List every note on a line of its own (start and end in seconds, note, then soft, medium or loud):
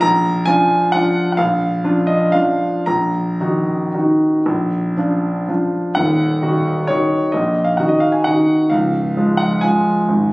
0.01 0.46 A#1 medium
0.01 0.46 A#5 loud
0.46 0.90 F3 medium
0.46 0.90 D4 medium
0.46 0.90 F4 medium
0.46 0.93 G#5 loud
0.92 1.35 F3 medium
0.92 1.35 D4 soft
0.92 1.36 F4 medium
0.92 1.31 F#5 medium
1.32 1.39 F#5 medium
1.37 1.83 A#1 medium
1.37 2.08 F5 medium
1.84 2.29 F3 soft
1.84 2.30 D4 soft
1.84 2.30 F4 medium
2.07 2.33 D#5 medium
2.32 2.84 F3 soft
2.32 2.84 D4 soft
2.32 2.84 F4 soft
2.32 2.87 F5 medium
2.86 3.39 A#1 medium
2.86 5.73 A#5 medium
3.40 3.91 D#3 soft
3.40 3.91 D#4 soft
3.40 3.91 F#4 soft
3.94 4.42 D#3 soft
3.94 4.43 D#4 soft
3.94 4.43 F#4 soft
4.46 4.96 A#1 medium
4.97 5.45 F3 soft
4.97 5.45 D4 soft
4.97 5.45 F4 soft
5.48 5.93 F3 soft
5.48 5.94 D4 soft
5.48 5.94 F4 soft
5.95 6.41 D#1 soft
5.95 6.41 D#2 medium
5.95 6.87 F#5 medium
6.42 6.85 D#3 soft
6.42 6.85 D#4 soft
6.42 6.85 F#4 soft
6.87 7.31 D#3 soft
6.87 7.31 D#4 soft
6.87 7.31 F#4 soft
6.87 7.34 C#5 medium
7.32 7.77 A#1 medium
7.32 7.77 A#2 medium
7.32 7.66 D#5 medium
7.64 7.77 F5 medium
7.77 8.21 D#3 soft
7.77 8.22 D#4 soft
7.77 8.22 F#4 soft
7.77 7.89 F#5 medium
7.89 8.01 D#5 medium
8.00 8.13 F5 medium
8.12 8.25 G#5 medium
8.24 8.67 D#3 soft
8.24 8.68 D#4 soft
8.24 8.68 F#4 soft
8.24 8.70 F#5 medium
8.70 9.15 C#1 medium
8.70 9.15 C#2 medium
8.70 9.38 F5 medium
9.17 9.59 F3 soft
9.17 9.59 G#3 soft
9.17 9.60 F4 soft
9.37 9.62 F#5 medium
9.61 10.04 F3 soft
9.61 10.04 G#3 soft
9.61 10.04 F4 soft
9.61 10.33 G#5 medium
10.08 10.33 G#1 medium
10.08 10.33 G#2 medium